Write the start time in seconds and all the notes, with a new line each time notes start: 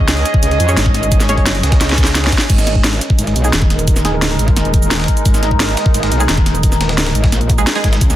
Already playing: C#2 C#4 G#4 C#5 D#5
0.08 snare, closed hi-hat, cabasa
0.17 snare, closed hi-hat
0.25 snare, closed hi-hat, cabasa
0.34 kick
0.43 C#2, closed hi-hat, cabasa
0.51 snare, closed hi-hat
0.60 F2, closed hi-hat, cabasa
0.69 C#4 G#4 C#5, snare, cabasa
0.77 G#1, snare, closed hi-hat, cabasa
0.86 kick, snare
0.94 snare, closed hi-hat
1.03 closed hi-hat, cabasa
1.12 kick, closed hi-hat, cabasa
1.20 snare, closed hi-hat, cabasa
1.29 C#4 G#4 C#5, snare, closed hi-hat, cabasa
1.37 G1, kick, closed hi-hat
1.46 snare, closed hi-hat, open hi-hat, cabasa
1.55 closed hi-hat
1.63 C#2, snare, closed hi-hat, cabasa
1.72 kick, snare, closed hi-hat
1.81 C#2, snare, closed hi-hat, cabasa
1.89 snare, closed hi-hat
1.92 snare
1.98 kick, snare, closed hi-hat, cabasa
2.04 snare, cabasa
2.07 snare, closed hi-hat
2.15 snare, closed hi-hat, cabasa
2.24 snare, closed hi-hat
2.27 snare
2.32 kick, snare, closed hi-hat
2.38 snare, closed hi-hat, cabasa
2.41 snare, closed hi-hat
2.50 G#1 G#3 D#4 A#4, kick, closed hi-hat, crash, cabasa
2.58 snare, cabasa
2.67 snare, closed hi-hat
2.75 kick
2.84 snare, closed hi-hat, cabasa
2.93 snare, closed hi-hat
3.01 snare, closed hi-hat, cabasa
3.10 kick
3.19 G#1, closed hi-hat, cabasa
3.27 snare, closed hi-hat
3.36 B1, closed hi-hat, cabasa
3.44 G#3 D#4 G#4, snare, cabasa
3.53 D#1, snare, closed hi-hat, cabasa
3.62 kick, snare
3.70 snare, closed hi-hat
3.79 closed hi-hat, cabasa
3.88 kick, closed hi-hat, cabasa
3.96 snare, cabasa
4.05 G#3 D#4 G#4, snare, closed hi-hat
4.13 D1
4.22 snare, closed hi-hat, open hi-hat, cabasa
4.31 closed hi-hat
4.39 G#1, closed hi-hat, cabasa
4.48 kick, closed hi-hat
4.57 D#1, snare, closed hi-hat, cabasa
4.65 closed hi-hat
4.74 kick, closed hi-hat, cabasa
4.82 closed hi-hat, cabasa
4.91 snare, closed hi-hat, cabasa
4.95 snare, closed hi-hat
5.00 snare, closed hi-hat
5.04 snare, closed hi-hat
5.08 kick, closed hi-hat
5.17 closed hi-hat, cabasa
5.25 G#1, kick, closed hi-hat, cabasa
5.34 snare, cabasa
5.43 snare, closed hi-hat
5.51 kick
5.60 snare, closed hi-hat, cabasa
5.69 snare, closed hi-hat
5.77 snare, closed hi-hat, cabasa
5.86 kick, snare
5.94 G#1, snare, closed hi-hat, cabasa
6.03 snare, closed hi-hat
6.12 B1, snare, closed hi-hat, cabasa
6.20 G#3 D#4 G#4, snare, closed hi-hat, cabasa
6.29 D#1, snare, closed hi-hat, cabasa
6.37 kick, snare
6.46 snare, closed hi-hat
6.55 closed hi-hat, cabasa
6.63 kick, closed hi-hat, cabasa
6.72 snare, cabasa
6.81 snare, closed hi-hat
6.89 D1, snare, closed hi-hat
6.98 snare, closed hi-hat, cabasa
7.06 snare, closed hi-hat
7.15 G#1, closed hi-hat, cabasa
7.24 kick, snare, closed hi-hat
7.32 A#1, snare, closed hi-hat, cabasa
7.41 closed hi-hat
7.50 kick, closed hi-hat, cabasa
7.58 G#3 D#4 G#4, closed hi-hat, cabasa
7.67 snare, closed hi-hat, cabasa
7.75 G#3 D#4 G#4, snare, closed hi-hat
7.84 G#1, kick, snare, closed hi-hat
7.93 snare, closed hi-hat, cabasa
8.01 C#2, kick, closed hi-hat, cabasa
8.10 snare, cabasa